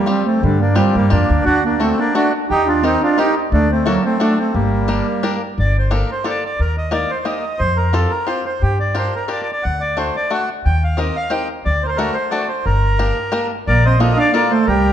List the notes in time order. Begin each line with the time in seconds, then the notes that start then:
0.06 G3 C4 F4 G4
0.26 A3 C4
0.41 G2 D3 G3
0.60 A#3 D4
0.75 G3 A#3 C4 D4 F4 G4
0.93 G2 G3 A#3
1.10 F2 A#3 D4 F4 G4
1.30 D2
1.45 D2 D4 F#4
1.64 A#3 D4
1.80 A3 C4 D4 F#4 A4
1.97 A#3 D4
2.14 A3 D4 F#4 A4
2.48 D#2 D#4 G4
2.66 D4 F4
2.83 C4 D#4 G4 A#4
3.01 D4 F4
3.17 C4 D#4 G4 A#4
3.52 D2 A3 D4
3.70 A3 C4
3.86 F#3 A3 A#3 D4 F#4 A4
4.05 A3 C4
4.20 A3 D4 F#4 A4
4.38 A3 C4
4.53 G1 G3 A#3
4.88 A#3 D4 G4 A#4
5.23 A#3 D4 G4 A#4
5.58 G1 D5
5.79 C5
5.91 A#3 D4 G4 A4 A#4
6.12 C5
6.24 A#3 D4 G4 A4
6.29 D5
6.45 D5
6.60 D#2 A#4
6.78 D#5
6.91 A#3 D#4 G4 A#4 D5
7.10 C5
7.25 A#3 D#4 G4 A#4 D#5
7.59 F2 C5
7.77 A#4
7.93 C4 F4 G4 A4 C5
8.11 A#4
8.27 C4 F4 G4 C5
8.46 C5
8.62 G2 G4
8.80 D5
8.95 D4 F4 G4 A#4 C5
9.16 A#4
9.28 D4 F4 G4 A#4 D5
9.42 D5
9.52 D5
9.63 D2 F#5
9.80 D5
9.97 A3 D4 F#4 A4 C5
10.16 D5
10.30 A3 D4 F#4 A4 F#5
10.65 D#2 G5
10.84 F5
10.97 C4 D#4 G4 A#4 D#5
11.16 F5
11.30 C4 D#4 G4 A#4 G5
11.65 D2 D5
11.83 A#4 C5
11.88 C5
11.96 A3 D4 F#4 A4 A#4
12.14 C5
12.31 A3 D4 F#4 A4 D5
12.48 C5
12.66 G1 A#4
12.99 A#3 D4 G4 A#4
13.32 A#3 D4 G4 A#4
13.67 A#1 A#3 A#4 D5
13.85 C4 C5 D#5
13.99 A#3 D4 F4 A4 A#4 D#5
14.16 D4 D5 F5
14.32 A#3 D4 F4 A4 A#4 D5
14.50 A3 A4 C5
14.67 C2 G3 G4 A#4